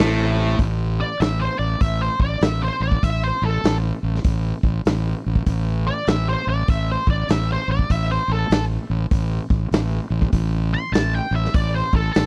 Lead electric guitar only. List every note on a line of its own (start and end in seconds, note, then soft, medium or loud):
1.00 1.20 D5 loud
1.20 1.40 E5 medium
1.39 1.58 C5 medium
1.59 1.80 D5 medium
1.81 2.01 E5 medium
2.01 2.21 C5 medium
2.22 2.42 D5 loud
2.43 2.62 E5 medium
2.62 2.82 C5 medium
2.83 3.02 D5 medium
3.03 3.23 E5 medium
3.24 3.43 C5 medium
3.43 3.76 A4 medium
5.87 6.07 D5 loud
6.08 6.27 E5 medium
6.28 6.48 C5 medium
6.49 6.68 D5 medium
6.70 6.89 E5 medium
6.91 7.10 C5 medium
7.10 7.29 D5 medium
7.31 7.50 E5 loud
7.52 7.70 C5 medium
7.71 7.90 D5 medium
7.91 8.10 E5 medium
8.11 8.30 C5 medium
8.32 8.63 A4 medium
10.74 10.93 C6 loud
10.93 11.13 A5 medium
11.15 11.34 G5 medium
11.36 11.54 E5 medium
11.55 11.74 D5 medium
11.75 11.95 C5 medium
11.95 12.12 A4 medium
12.13 12.26 A4 medium